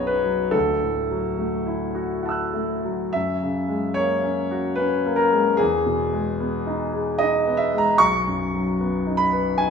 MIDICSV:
0, 0, Header, 1, 2, 480
1, 0, Start_track
1, 0, Tempo, 854701
1, 303, Time_signature, 3, 2, 24, 8
1, 1254, Tempo, 921659
1, 1734, Tempo, 814111
1, 3654, Tempo, 793651
1, 5643, End_track
2, 0, Start_track
2, 0, Title_t, "Grand piano"
2, 0, Program_c, 0, 0
2, 0, Control_c, 0, 64, 127
2, 0, Note_on_c, 0, 35, 58
2, 0, Note_on_c, 0, 42, 46
2, 0, Note_on_c, 0, 54, 48
2, 0, Note_on_c, 0, 59, 49
2, 0, Note_on_c, 0, 63, 50
2, 0, Note_on_c, 0, 68, 51
2, 0, Note_on_c, 0, 73, 89
2, 0, Note_on_c, 0, 75, 85
2, 38, Note_on_c, 0, 71, 80
2, 70, Note_off_c, 0, 63, 0
2, 137, Note_off_c, 0, 54, 0
2, 137, Note_on_c, 0, 54, 44
2, 236, Note_off_c, 0, 59, 0
2, 280, Note_off_c, 0, 35, 0
2, 288, Note_on_c, 0, 69, 83
2, 294, Note_off_c, 0, 71, 0
2, 301, Note_on_c, 0, 38, 60
2, 302, Note_off_c, 0, 54, 0
2, 313, Note_off_c, 0, 75, 0
2, 313, Control_c, 0, 64, 0
2, 317, Note_off_c, 0, 68, 0
2, 318, Note_off_c, 0, 42, 0
2, 318, Note_off_c, 0, 73, 0
2, 402, Control_c, 0, 64, 127
2, 467, Note_on_c, 0, 45, 46
2, 624, Note_on_c, 0, 54, 46
2, 716, Note_off_c, 0, 45, 0
2, 777, Note_on_c, 0, 57, 47
2, 871, Note_off_c, 0, 54, 0
2, 935, Note_on_c, 0, 64, 50
2, 1026, Note_off_c, 0, 57, 0
2, 1093, Note_on_c, 0, 66, 53
2, 1189, Note_off_c, 0, 64, 0
2, 1249, Note_on_c, 0, 78, 40
2, 1251, Note_on_c, 0, 64, 50
2, 1266, Note_on_c, 0, 81, 42
2, 1283, Note_on_c, 0, 88, 41
2, 1296, Note_on_c, 0, 90, 43
2, 1348, Note_off_c, 0, 66, 0
2, 1412, Note_on_c, 0, 57, 48
2, 1509, Note_off_c, 0, 64, 0
2, 1575, Note_on_c, 0, 54, 47
2, 1672, Note_off_c, 0, 57, 0
2, 1710, Note_off_c, 0, 78, 0
2, 1711, Note_off_c, 0, 38, 0
2, 1718, Note_off_c, 0, 81, 0
2, 1719, Note_on_c, 0, 76, 88
2, 1726, Note_off_c, 0, 69, 0
2, 1727, Note_off_c, 0, 88, 0
2, 1731, Note_on_c, 0, 42, 55
2, 1732, Note_off_c, 0, 54, 0
2, 1733, Note_off_c, 0, 90, 0
2, 1741, Control_c, 0, 64, 0
2, 1835, Control_c, 0, 64, 127
2, 1894, Note_on_c, 0, 49, 47
2, 2047, Note_on_c, 0, 56, 46
2, 2150, Note_off_c, 0, 49, 0
2, 2199, Note_on_c, 0, 73, 91
2, 2209, Note_off_c, 0, 76, 0
2, 2209, Note_on_c, 0, 58, 50
2, 2307, Note_off_c, 0, 56, 0
2, 2373, Note_on_c, 0, 61, 50
2, 2468, Note_off_c, 0, 58, 0
2, 2534, Note_on_c, 0, 66, 54
2, 2631, Note_off_c, 0, 61, 0
2, 2678, Note_on_c, 0, 71, 89
2, 2688, Note_off_c, 0, 73, 0
2, 2692, Note_on_c, 0, 61, 56
2, 2791, Note_off_c, 0, 66, 0
2, 2856, Note_on_c, 0, 58, 53
2, 2917, Note_on_c, 0, 70, 84
2, 2927, Note_off_c, 0, 71, 0
2, 2950, Note_off_c, 0, 61, 0
2, 3011, Note_on_c, 0, 56, 51
2, 3111, Note_off_c, 0, 58, 0
2, 3149, Note_off_c, 0, 42, 0
2, 3159, Note_on_c, 0, 68, 93
2, 3164, Note_off_c, 0, 70, 0
2, 3171, Note_off_c, 0, 56, 0
2, 3172, Note_on_c, 0, 40, 64
2, 3181, Control_c, 0, 64, 0
2, 3262, Control_c, 0, 64, 127
2, 3330, Note_on_c, 0, 47, 52
2, 3490, Note_on_c, 0, 56, 49
2, 3587, Note_off_c, 0, 47, 0
2, 3647, Note_on_c, 0, 59, 50
2, 3751, Note_off_c, 0, 56, 0
2, 3810, Note_on_c, 0, 63, 53
2, 3912, Note_off_c, 0, 59, 0
2, 3961, Note_off_c, 0, 68, 0
2, 3971, Note_on_c, 0, 68, 52
2, 4071, Note_off_c, 0, 63, 0
2, 4122, Note_on_c, 0, 75, 92
2, 4134, Note_on_c, 0, 63, 54
2, 4229, Note_off_c, 0, 68, 0
2, 4296, Note_on_c, 0, 59, 51
2, 4356, Note_on_c, 0, 76, 91
2, 4368, Note_off_c, 0, 75, 0
2, 4390, Note_off_c, 0, 63, 0
2, 4457, Note_on_c, 0, 56, 49
2, 4483, Note_on_c, 0, 82, 88
2, 4487, Note_off_c, 0, 76, 0
2, 4552, Note_off_c, 0, 59, 0
2, 4592, Note_off_c, 0, 40, 0
2, 4605, Note_on_c, 0, 85, 102
2, 4610, Note_off_c, 0, 82, 0
2, 4614, Note_on_c, 0, 35, 60
2, 4617, Note_off_c, 0, 56, 0
2, 4626, Control_c, 0, 64, 0
2, 4730, Control_c, 0, 64, 127
2, 4781, Note_on_c, 0, 42, 45
2, 4941, Note_on_c, 0, 54, 46
2, 5034, Note_off_c, 0, 42, 0
2, 5104, Note_on_c, 0, 59, 47
2, 5195, Note_off_c, 0, 54, 0
2, 5262, Note_on_c, 0, 63, 49
2, 5325, Note_on_c, 0, 83, 91
2, 5332, Note_off_c, 0, 85, 0
2, 5357, Note_off_c, 0, 59, 0
2, 5419, Note_on_c, 0, 71, 51
2, 5514, Note_off_c, 0, 63, 0
2, 5568, Note_off_c, 0, 83, 0
2, 5569, Note_on_c, 0, 80, 89
2, 5580, Note_on_c, 0, 63, 49
2, 5643, Note_off_c, 0, 35, 0
2, 5643, Note_off_c, 0, 63, 0
2, 5643, Note_off_c, 0, 71, 0
2, 5643, Note_off_c, 0, 80, 0
2, 5643, End_track
0, 0, End_of_file